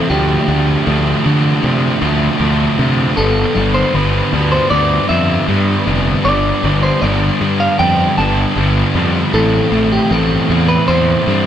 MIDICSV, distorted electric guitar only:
0, 0, Header, 1, 2, 480
1, 0, Start_track
1, 0, Tempo, 770218
1, 58, Time_signature, 4, 2, 24, 8
1, 7144, End_track
2, 0, Start_track
2, 0, Title_t, "Distorted electric guitar"
2, 0, Program_c, 0, 30
2, 59, Note_on_c, 0, 50, 94
2, 60, Note_on_c, 0, 53, 115
2, 62, Note_on_c, 0, 57, 116
2, 64, Note_on_c, 0, 62, 111
2, 289, Note_off_c, 0, 50, 0
2, 291, Note_off_c, 0, 53, 0
2, 296, Note_on_c, 0, 50, 94
2, 298, Note_off_c, 0, 57, 0
2, 298, Note_on_c, 0, 53, 89
2, 300, Note_off_c, 0, 62, 0
2, 300, Note_on_c, 0, 57, 100
2, 303, Note_on_c, 0, 62, 113
2, 527, Note_off_c, 0, 50, 0
2, 529, Note_off_c, 0, 53, 0
2, 534, Note_on_c, 0, 50, 81
2, 536, Note_off_c, 0, 57, 0
2, 537, Note_on_c, 0, 53, 94
2, 538, Note_on_c, 0, 57, 98
2, 539, Note_off_c, 0, 62, 0
2, 541, Note_on_c, 0, 62, 93
2, 768, Note_off_c, 0, 50, 0
2, 771, Note_off_c, 0, 53, 0
2, 775, Note_on_c, 0, 50, 89
2, 776, Note_off_c, 0, 57, 0
2, 778, Note_on_c, 0, 53, 101
2, 779, Note_off_c, 0, 62, 0
2, 779, Note_on_c, 0, 57, 98
2, 782, Note_on_c, 0, 62, 101
2, 1008, Note_off_c, 0, 50, 0
2, 1011, Note_off_c, 0, 53, 0
2, 1016, Note_on_c, 0, 50, 85
2, 1018, Note_off_c, 0, 57, 0
2, 1018, Note_off_c, 0, 62, 0
2, 1018, Note_on_c, 0, 53, 103
2, 1020, Note_on_c, 0, 57, 106
2, 1020, Note_on_c, 0, 62, 115
2, 1247, Note_off_c, 0, 50, 0
2, 1249, Note_off_c, 0, 53, 0
2, 1255, Note_on_c, 0, 50, 85
2, 1257, Note_off_c, 0, 57, 0
2, 1257, Note_on_c, 0, 53, 89
2, 1258, Note_off_c, 0, 62, 0
2, 1260, Note_on_c, 0, 57, 81
2, 1260, Note_on_c, 0, 62, 98
2, 1485, Note_off_c, 0, 50, 0
2, 1486, Note_off_c, 0, 53, 0
2, 1492, Note_on_c, 0, 50, 93
2, 1494, Note_on_c, 0, 53, 94
2, 1495, Note_off_c, 0, 57, 0
2, 1497, Note_off_c, 0, 62, 0
2, 1497, Note_on_c, 0, 57, 102
2, 1500, Note_on_c, 0, 62, 108
2, 1728, Note_off_c, 0, 50, 0
2, 1732, Note_off_c, 0, 53, 0
2, 1736, Note_on_c, 0, 50, 90
2, 1739, Note_off_c, 0, 57, 0
2, 1739, Note_on_c, 0, 53, 92
2, 1740, Note_off_c, 0, 62, 0
2, 1741, Note_on_c, 0, 57, 101
2, 1742, Note_on_c, 0, 62, 99
2, 1962, Note_off_c, 0, 50, 0
2, 1964, Note_off_c, 0, 53, 0
2, 1972, Note_on_c, 0, 43, 86
2, 1973, Note_on_c, 0, 50, 105
2, 1976, Note_off_c, 0, 57, 0
2, 1977, Note_off_c, 0, 62, 0
2, 1977, Note_on_c, 0, 55, 94
2, 1978, Note_on_c, 0, 59, 106
2, 1980, Note_on_c, 0, 62, 92
2, 2207, Note_off_c, 0, 43, 0
2, 2207, Note_off_c, 0, 50, 0
2, 2210, Note_on_c, 0, 43, 91
2, 2214, Note_on_c, 0, 50, 90
2, 2215, Note_off_c, 0, 55, 0
2, 2216, Note_off_c, 0, 59, 0
2, 2217, Note_off_c, 0, 62, 0
2, 2217, Note_on_c, 0, 55, 92
2, 2218, Note_on_c, 0, 59, 95
2, 2220, Note_on_c, 0, 62, 90
2, 2447, Note_off_c, 0, 50, 0
2, 2449, Note_off_c, 0, 43, 0
2, 2451, Note_on_c, 0, 43, 93
2, 2454, Note_off_c, 0, 55, 0
2, 2455, Note_on_c, 0, 50, 95
2, 2456, Note_off_c, 0, 59, 0
2, 2456, Note_on_c, 0, 55, 92
2, 2457, Note_off_c, 0, 62, 0
2, 2458, Note_on_c, 0, 59, 94
2, 2460, Note_on_c, 0, 62, 99
2, 2690, Note_off_c, 0, 50, 0
2, 2692, Note_off_c, 0, 43, 0
2, 2695, Note_on_c, 0, 43, 80
2, 2697, Note_off_c, 0, 55, 0
2, 2698, Note_on_c, 0, 50, 93
2, 2700, Note_off_c, 0, 59, 0
2, 2700, Note_on_c, 0, 55, 85
2, 2701, Note_off_c, 0, 62, 0
2, 2702, Note_on_c, 0, 59, 97
2, 2704, Note_on_c, 0, 62, 98
2, 2929, Note_off_c, 0, 43, 0
2, 2930, Note_off_c, 0, 50, 0
2, 2934, Note_off_c, 0, 59, 0
2, 2936, Note_on_c, 0, 43, 107
2, 2938, Note_off_c, 0, 55, 0
2, 2938, Note_off_c, 0, 62, 0
2, 2938, Note_on_c, 0, 50, 95
2, 2941, Note_on_c, 0, 55, 96
2, 2941, Note_on_c, 0, 59, 109
2, 2945, Note_on_c, 0, 62, 110
2, 3166, Note_off_c, 0, 43, 0
2, 3167, Note_off_c, 0, 50, 0
2, 3172, Note_off_c, 0, 59, 0
2, 3174, Note_off_c, 0, 62, 0
2, 3174, Note_on_c, 0, 43, 83
2, 3175, Note_off_c, 0, 55, 0
2, 3175, Note_on_c, 0, 50, 76
2, 3178, Note_on_c, 0, 55, 98
2, 3180, Note_on_c, 0, 59, 83
2, 3181, Note_on_c, 0, 62, 86
2, 3405, Note_off_c, 0, 43, 0
2, 3409, Note_off_c, 0, 50, 0
2, 3413, Note_off_c, 0, 59, 0
2, 3413, Note_on_c, 0, 43, 97
2, 3415, Note_off_c, 0, 55, 0
2, 3415, Note_off_c, 0, 62, 0
2, 3417, Note_on_c, 0, 50, 102
2, 3418, Note_on_c, 0, 55, 100
2, 3421, Note_on_c, 0, 59, 104
2, 3422, Note_on_c, 0, 62, 115
2, 3647, Note_off_c, 0, 43, 0
2, 3648, Note_off_c, 0, 50, 0
2, 3653, Note_off_c, 0, 59, 0
2, 3653, Note_off_c, 0, 62, 0
2, 3655, Note_off_c, 0, 55, 0
2, 3655, Note_on_c, 0, 43, 90
2, 3655, Note_on_c, 0, 50, 102
2, 3658, Note_on_c, 0, 55, 89
2, 3660, Note_on_c, 0, 59, 106
2, 3661, Note_on_c, 0, 62, 116
2, 3886, Note_off_c, 0, 43, 0
2, 3887, Note_off_c, 0, 50, 0
2, 3892, Note_off_c, 0, 59, 0
2, 3893, Note_on_c, 0, 43, 103
2, 3894, Note_off_c, 0, 62, 0
2, 3895, Note_off_c, 0, 55, 0
2, 3895, Note_on_c, 0, 50, 109
2, 3897, Note_on_c, 0, 55, 119
2, 3899, Note_on_c, 0, 59, 113
2, 3901, Note_on_c, 0, 62, 114
2, 4128, Note_off_c, 0, 43, 0
2, 4129, Note_off_c, 0, 50, 0
2, 4133, Note_off_c, 0, 59, 0
2, 4135, Note_on_c, 0, 43, 92
2, 4136, Note_on_c, 0, 50, 100
2, 4137, Note_off_c, 0, 55, 0
2, 4137, Note_off_c, 0, 62, 0
2, 4140, Note_on_c, 0, 55, 97
2, 4140, Note_on_c, 0, 59, 105
2, 4145, Note_on_c, 0, 62, 98
2, 4369, Note_off_c, 0, 43, 0
2, 4373, Note_off_c, 0, 50, 0
2, 4376, Note_off_c, 0, 59, 0
2, 4377, Note_on_c, 0, 43, 85
2, 4378, Note_off_c, 0, 55, 0
2, 4378, Note_off_c, 0, 62, 0
2, 4380, Note_on_c, 0, 50, 92
2, 4381, Note_on_c, 0, 55, 87
2, 4383, Note_on_c, 0, 59, 98
2, 4386, Note_on_c, 0, 62, 102
2, 4611, Note_off_c, 0, 43, 0
2, 4612, Note_off_c, 0, 50, 0
2, 4617, Note_off_c, 0, 59, 0
2, 4619, Note_off_c, 0, 62, 0
2, 4619, Note_on_c, 0, 43, 102
2, 4620, Note_off_c, 0, 55, 0
2, 4620, Note_on_c, 0, 50, 96
2, 4622, Note_on_c, 0, 55, 105
2, 4625, Note_on_c, 0, 59, 91
2, 4626, Note_on_c, 0, 62, 109
2, 4849, Note_off_c, 0, 43, 0
2, 4851, Note_off_c, 0, 50, 0
2, 4853, Note_off_c, 0, 55, 0
2, 4854, Note_off_c, 0, 59, 0
2, 4856, Note_off_c, 0, 62, 0
2, 4857, Note_on_c, 0, 43, 106
2, 4858, Note_on_c, 0, 50, 99
2, 4860, Note_on_c, 0, 55, 112
2, 4861, Note_on_c, 0, 59, 105
2, 4863, Note_on_c, 0, 62, 125
2, 5092, Note_off_c, 0, 43, 0
2, 5094, Note_off_c, 0, 50, 0
2, 5098, Note_off_c, 0, 55, 0
2, 5100, Note_off_c, 0, 59, 0
2, 5100, Note_on_c, 0, 43, 87
2, 5101, Note_off_c, 0, 62, 0
2, 5101, Note_on_c, 0, 50, 87
2, 5106, Note_on_c, 0, 55, 90
2, 5107, Note_on_c, 0, 59, 98
2, 5108, Note_on_c, 0, 62, 104
2, 5334, Note_off_c, 0, 43, 0
2, 5337, Note_off_c, 0, 50, 0
2, 5339, Note_off_c, 0, 55, 0
2, 5340, Note_off_c, 0, 59, 0
2, 5342, Note_on_c, 0, 43, 106
2, 5343, Note_off_c, 0, 62, 0
2, 5345, Note_on_c, 0, 50, 105
2, 5347, Note_on_c, 0, 55, 111
2, 5348, Note_on_c, 0, 59, 106
2, 5351, Note_on_c, 0, 62, 115
2, 5575, Note_off_c, 0, 43, 0
2, 5577, Note_off_c, 0, 50, 0
2, 5578, Note_off_c, 0, 55, 0
2, 5582, Note_off_c, 0, 59, 0
2, 5582, Note_off_c, 0, 62, 0
2, 5583, Note_on_c, 0, 43, 99
2, 5584, Note_on_c, 0, 50, 89
2, 5585, Note_on_c, 0, 55, 97
2, 5589, Note_on_c, 0, 62, 103
2, 5590, Note_on_c, 0, 59, 115
2, 5807, Note_off_c, 0, 43, 0
2, 5808, Note_off_c, 0, 50, 0
2, 5808, Note_off_c, 0, 55, 0
2, 5810, Note_off_c, 0, 59, 0
2, 5810, Note_off_c, 0, 62, 0
2, 5820, Note_on_c, 0, 45, 104
2, 5821, Note_on_c, 0, 52, 99
2, 5824, Note_on_c, 0, 57, 105
2, 5825, Note_on_c, 0, 60, 116
2, 5828, Note_on_c, 0, 64, 102
2, 6049, Note_off_c, 0, 45, 0
2, 6054, Note_off_c, 0, 52, 0
2, 6057, Note_on_c, 0, 45, 101
2, 6059, Note_off_c, 0, 64, 0
2, 6060, Note_off_c, 0, 57, 0
2, 6061, Note_on_c, 0, 52, 103
2, 6062, Note_off_c, 0, 60, 0
2, 6062, Note_on_c, 0, 57, 97
2, 6064, Note_on_c, 0, 60, 104
2, 6067, Note_on_c, 0, 64, 100
2, 6291, Note_off_c, 0, 45, 0
2, 6293, Note_off_c, 0, 52, 0
2, 6298, Note_off_c, 0, 64, 0
2, 6298, Note_on_c, 0, 45, 89
2, 6299, Note_off_c, 0, 57, 0
2, 6301, Note_off_c, 0, 60, 0
2, 6301, Note_on_c, 0, 52, 99
2, 6302, Note_on_c, 0, 57, 100
2, 6303, Note_on_c, 0, 60, 103
2, 6306, Note_on_c, 0, 64, 91
2, 6530, Note_off_c, 0, 45, 0
2, 6534, Note_off_c, 0, 52, 0
2, 6537, Note_on_c, 0, 45, 98
2, 6539, Note_off_c, 0, 64, 0
2, 6541, Note_off_c, 0, 57, 0
2, 6541, Note_off_c, 0, 60, 0
2, 6541, Note_on_c, 0, 52, 95
2, 6543, Note_on_c, 0, 57, 89
2, 6544, Note_on_c, 0, 60, 101
2, 6546, Note_on_c, 0, 64, 104
2, 6773, Note_off_c, 0, 45, 0
2, 6774, Note_off_c, 0, 52, 0
2, 6777, Note_off_c, 0, 60, 0
2, 6780, Note_off_c, 0, 64, 0
2, 6780, Note_on_c, 0, 45, 101
2, 6781, Note_on_c, 0, 52, 111
2, 6782, Note_off_c, 0, 57, 0
2, 6784, Note_on_c, 0, 57, 109
2, 6785, Note_on_c, 0, 60, 108
2, 6787, Note_on_c, 0, 64, 118
2, 7014, Note_off_c, 0, 45, 0
2, 7015, Note_off_c, 0, 52, 0
2, 7019, Note_off_c, 0, 60, 0
2, 7020, Note_off_c, 0, 57, 0
2, 7020, Note_off_c, 0, 64, 0
2, 7021, Note_on_c, 0, 45, 79
2, 7022, Note_on_c, 0, 52, 86
2, 7023, Note_on_c, 0, 57, 92
2, 7026, Note_on_c, 0, 60, 91
2, 7027, Note_on_c, 0, 64, 96
2, 7144, Note_off_c, 0, 45, 0
2, 7144, Note_off_c, 0, 52, 0
2, 7144, Note_off_c, 0, 57, 0
2, 7144, Note_off_c, 0, 60, 0
2, 7144, Note_off_c, 0, 64, 0
2, 7144, End_track
0, 0, End_of_file